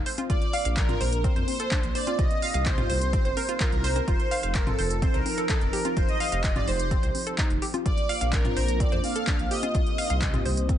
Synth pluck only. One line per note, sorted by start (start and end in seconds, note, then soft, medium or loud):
0.06 0.17 C5 medium
0.18 0.25 F4 medium
0.30 0.37 F4 medium
0.53 0.60 F5 loud
0.65 0.69 F5 medium
0.89 0.99 F4 medium
1.01 1.11 C5 medium
1.24 1.31 C4 medium
1.36 1.40 C5 medium
1.60 1.67 A4 medium
1.72 1.76 D4 loud
1.95 2.06 C5 medium
2.07 2.14 F4 medium
2.19 2.26 F4 medium
2.42 2.49 F5 loud
2.54 2.58 F5 medium
2.78 2.88 F4 medium
2.90 3.00 C5 medium
3.13 3.20 C4 medium
3.25 3.29 C5 medium
3.37 3.44 A#4 medium
3.49 3.56 F4 medium
3.60 3.67 F4 loud
3.84 3.88 C5 loud
3.96 4.03 C5 medium
4.08 4.15 F4 medium
4.31 4.38 F5 loud
4.43 4.47 F5 medium
4.67 4.77 F4 medium
4.79 4.89 C5 medium
5.02 5.09 C4 medium
5.14 5.18 C5 medium
5.38 5.45 A4 medium
5.49 5.54 D#4 loud
5.73 5.83 G4 medium
5.85 5.92 F4 medium
5.97 6.04 F4 medium
6.20 6.27 F5 loud
6.32 6.36 F5 medium
6.56 6.66 F4 medium
6.68 6.78 C5 medium
6.91 6.98 C4 medium
7.03 7.07 C5 medium
7.27 7.34 A4 medium
7.38 7.43 D#4 loud
7.62 7.72 G4 medium
7.74 7.81 F4 medium
7.86 7.93 F4 medium
8.09 8.16 F5 loud
8.21 8.25 F5 medium
8.45 8.55 F4 medium
8.57 8.67 C5 medium
8.80 8.87 C4 medium
8.92 8.96 C5 medium
9.16 9.23 A4 medium
9.27 9.32 D4 loud
9.51 9.61 G4 medium
9.63 9.70 F4 medium
9.75 9.82 F4 medium
9.98 10.05 F5 loud
10.10 10.14 F5 medium
10.34 10.44 F4 medium
10.46 10.56 C5 medium
10.69 10.76 C4 medium